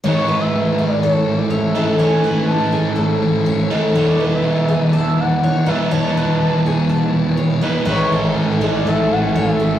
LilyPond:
<<
  \new Staff \with { instrumentName = "Soft synth lead" } { \time 4/4 \key a \major \tempo 4 = 122 cis''8. e''4 d''16 cis''8. d''16 e''4 | gis''4 a''2 r4 | d''8. e''4 d''16 e''8 fis''4 e''8 | a''2. r4 |
cis''4 r8 d''8 e''8 fis''8 e''4 | }
  \new Staff \with { instrumentName = "Twelve-string acoustic guitar" } { \time 4/4 \key a \major cis''8 b'4 gis'8 a'4 cis''8 a'8 | cis''8 b'4 gis'8 a'4 cis''8 a'8 | cis''8 b'4 gis'8 a''4 cis''8 b'8 | cis''8 b'4 gis'8 a''4 cis''8 b'8 |
b'8 a'4 gis'8 a'4 cis''8 a'8 | }
  \new Staff \with { instrumentName = "String machine" } { \time 4/4 \key a \major << { <a cis' a'>1~ | <a cis' a'>1 | <b d' a''>1~ | <b d' a''>1 |
<e'' gis'' cis'''>1 | } \\ { e1~ | e1~ | e1~ | e1 |
a'1 | } >> }
  \new Staff \with { instrumentName = "Overdriven electric guitar" } { \clef bass \time 4/4 \key a \major <a, e a cis' e'>2.~ <a, e a cis' e'>8 <a, e a cis' e'>8 | <a, e a cis' e'>2.~ <a, e a cis' e'>8 <a, e a cis' e'>8 | <e, b, e gis d' e'>2.~ <e, b, e gis d' e'>8 <e, b, e gis d' e'>8 | <e, b, e gis d' e'>2.~ <e, b, e gis d' e'>8 <e, b, e gis d' e'>8 |
<a, e a cis' e'>4. <a, e a cis' e'>2~ <a, e a cis' e'>8 | }
  \new Staff \with { instrumentName = "Distorted electric guitar" } { \clef bass \time 4/4 \key a \major <a, e a>4 <a, e a>8 <e a>8 <a, e a>8 <e a>4 <e a>8 | <a, e a>4 <a, e a>8 <e a>8 <a, e a>8 <e a>4 <e a>8 | <e, b, e>4 <e, b, e>8 <b, e>8 <e, b, e>8 <b, e>4 <b, e>8 | <e, b, e>4 <e, b, e>8 <b, e>8 <e, b, e>8 <b, e>4 <b, e>8 |
<a, e a>2 <a, e a>2 | }
  \new Staff \with { instrumentName = "Fingered electric bass" } { \clef bass \time 4/4 \key a \major r1 | r1 | r1 | r1 |
a,,8 a,,8 a,8 a,,8 a,,8 a,,8 a,,8 a,,8 | }
>>